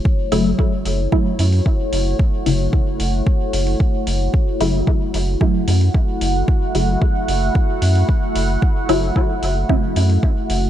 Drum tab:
HH |--o---o---oo--o-|--o---o---oo--o-|--o---o---oo--o-|--o---o---oo--o-|
BD |o---o---o---o---|o---o---o---o---|o---o---o---o---|o---o---o---o---|

HH |--o---o---oo--o-|
BD |o---o---o---o---|